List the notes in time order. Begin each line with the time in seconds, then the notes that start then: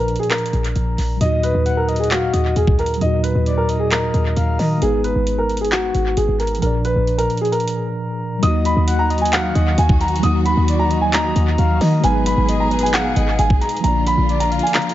Already playing: A#1 A#2 F3 D4 A#4 D5
0.08 closed hi-hat
0.16 G#4, closed hi-hat
0.23 closed hi-hat
0.30 A#4, clap, closed hi-hat
0.38 closed hi-hat
0.46 closed hi-hat
0.53 A#1, closed hi-hat
0.64 closed hi-hat
0.76 A#1, closed hi-hat
0.98 A#1, open hi-hat
1.17 D#2 A#2 F#3 D#5, closed hi-hat
1.22 D#4 F#4
1.43 B4, closed hi-hat
1.55 D#2
1.66 F#5, closed hi-hat
1.77 A#4
1.88 D#5, closed hi-hat
1.96 G#4, closed hi-hat
2.04 closed hi-hat
2.11 F#4 F5, clap, closed hi-hat
2.33 D#2 D#5, closed hi-hat
2.56 D#2 G#4, closed hi-hat
2.67 kick
2.79 A#4, closed hi-hat
2.86 closed hi-hat
2.94 F#3, closed hi-hat
3.00 D#2 A#2 D#4 D#5, closed hi-hat
3.06 F#4
3.23 B4, closed hi-hat
3.35 D#2
3.46 D5, closed hi-hat
3.58 A#4
3.69 D#5, closed hi-hat
3.79 G#4
3.91 A#4, clap, closed hi-hat
4.14 D#2, closed hi-hat
4.37 D#2 F5, closed hi-hat
4.59 D#3 D#5, open hi-hat
4.78 G#3 B3
4.82 G#1 D#4 G#4, closed hi-hat
4.86 B4
5.04 B4, closed hi-hat
5.16 G#1
5.27 closed hi-hat
5.38 A#4
5.49 closed hi-hat
5.57 closed hi-hat
5.61 G#4, closed hi-hat
5.72 F#4, clap, closed hi-hat
5.95 G#1, closed hi-hat
6.17 G#1 G#4, closed hi-hat
6.28 G#1
6.40 A#4, closed hi-hat
6.47 closed hi-hat
6.55 F3, closed hi-hat
6.61 A#1 A#2 D4 A#4, closed hi-hat
6.66 D5
6.85 B4, closed hi-hat
6.96 A#1
7.07 closed hi-hat
7.18 A#4, closed hi-hat
7.30 closed hi-hat
7.37 G#4, closed hi-hat
7.45 closed hi-hat
7.52 A#4, closed hi-hat
7.60 closed hi-hat
7.68 closed hi-hat
8.39 D#2 D#3 F#3 A#3 F#4 D#5 D#6, closed hi-hat
8.44 D#4 F#4
8.65 B5, closed hi-hat
8.77 D#2
8.88 F#5, closed hi-hat
8.99 A#5
9.10 D#5, closed hi-hat
9.18 G#5, closed hi-hat
9.25 closed hi-hat
9.33 F5 F#5, clap, closed hi-hat
9.55 D#2 D#5, closed hi-hat
9.78 D#2 G#5, closed hi-hat
9.89 kick
10.01 A#5, closed hi-hat
10.08 closed hi-hat
10.16 F#3, closed hi-hat
10.22 D#2 A#3 D#4 D#6, closed hi-hat
10.27 F#4
10.45 B5, closed hi-hat
10.57 D#2
10.68 D5, closed hi-hat
10.79 A#5
10.91 D#5, closed hi-hat
11.01 G#5
11.13 A#5, clap, closed hi-hat
11.36 D#2, closed hi-hat
11.58 D#2 F5, closed hi-hat
11.81 D#3 D#5, open hi-hat
11.99 G#3 B3
12.04 G#1 B2 D#4 G#4 B4 G#5, closed hi-hat
12.08 B4
12.26 B5, closed hi-hat
12.37 G#1
12.49 D#5, closed hi-hat
12.60 A#5
12.71 B4, closed hi-hat
12.79 closed hi-hat
12.83 G#5, closed hi-hat
12.93 F5 F#5, clap, closed hi-hat
13.16 G#1 D#5, closed hi-hat
13.39 G#1 G#5, closed hi-hat
13.50 kick
13.61 A#5, closed hi-hat
13.69 closed hi-hat
13.77 F3, closed hi-hat
13.82 A#1 D3 A#3 D4 F4 A#5, closed hi-hat
13.88 D5
14.07 B5, closed hi-hat
14.18 A#1
14.29 D5, closed hi-hat
14.40 A#5, closed hi-hat
14.52 F5, closed hi-hat
14.59 G#5, closed hi-hat
14.67 closed hi-hat
14.74 clap, closed hi-hat
14.82 closed hi-hat
14.89 closed hi-hat